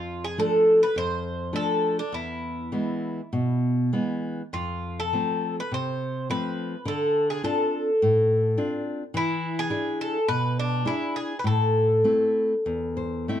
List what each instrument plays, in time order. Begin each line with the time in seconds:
Already playing: nylon-string guitar F2, bouzouki F4
0.24 bouzouki G#4
0.38 nylon-string guitar F3 A3 D4, bouzouki A4
0.83 bouzouki B4
0.96 nylon-string guitar F2, bouzouki C5
1.53 nylon-string guitar F3 A3 D4, bouzouki A4
1.99 bouzouki D4
2.12 nylon-string guitar E2, bouzouki E4
2.72 nylon-string guitar E3 G#3 B3
3.33 nylon-string guitar B2
3.93 nylon-string guitar E3 G#3 B3
4.53 nylon-string guitar F2, bouzouki F4
5.00 bouzouki A4
5.13 nylon-string guitar F3 A3 C4
5.60 bouzouki B4
5.72 nylon-string guitar C3, bouzouki C5
6.30 nylon-string guitar F3 A3 C4, bouzouki B4
6.85 nylon-string guitar D3, bouzouki A4
7.30 bouzouki G#4
7.43 nylon-string guitar C4 D4 F4, bouzouki A4
8.02 nylon-string guitar A2
8.58 nylon-string guitar C4 D4 F4
9.14 nylon-string guitar E3, bouzouki E4
9.59 bouzouki G#4
9.70 nylon-string guitar D4 E4 G#4
10.01 bouzouki A4
10.28 nylon-string guitar B2, bouzouki B4
10.60 bouzouki D4
10.85 nylon-string guitar D4 E4 G#4, bouzouki E4
11.16 bouzouki G#4
11.39 bouzouki B4
11.44 nylon-string guitar A2, bouzouki A4
12.04 nylon-string guitar A3 C4 E4
12.66 nylon-string guitar E2
12.97 nylon-string guitar C5
13.28 nylon-string guitar A3 C4 E4 E5